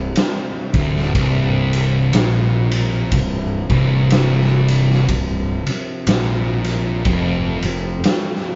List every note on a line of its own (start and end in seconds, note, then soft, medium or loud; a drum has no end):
0.00 0.14 C1 medium
0.00 7.00 C3 medium
0.00 3.07 G3 medium
0.00 7.00 C4 medium
0.16 snare loud
0.16 ride medium
0.74 1.12 D1 medium
0.74 1.14 D2 loud
0.74 kick loud
0.74 ride medium
0.96 snare soft
1.15 2.10 C1 medium
1.15 2.12 C2 loud
1.15 kick loud
1.15 ride medium
1.73 ride medium
2.13 3.08 A#1 medium
2.13 3.11 A#2 loud
2.13 snare loud
2.13 ride medium
2.71 ride medium
3.11 3.66 C1 medium
3.11 3.59 C2 medium
3.11 8.55 F3 medium
3.11 kick medium
3.11 ride loud
3.70 5.05 C1 medium
3.70 5.08 C2 loud
3.70 kick loud
3.70 ride medium
4.10 snare loud
4.10 ride medium
4.41 snare soft
4.68 ride medium
4.91 snare soft
5.08 5.63 C1 medium
5.08 5.55 C2 medium
5.08 kick medium
5.08 ride medium
5.67 muted distorted electric guitar stroke medium
5.67 muted fingered electric bass stroke soft
5.67 ride medium
6.07 7.01 A#1 medium
6.07 7.05 A#2 loud
6.07 snare loud
6.07 ride medium
6.64 ride medium
7.05 7.59 F1 loud
7.05 7.62 F2 loud
7.05 8.55 C4 medium
7.05 8.55 G4 medium
7.05 kick loud
7.05 ride medium
7.62 8.01 F1 medium
7.62 7.96 F2 medium
7.62 ride medium
8.04 snare loud
8.04 ride medium
8.35 snare soft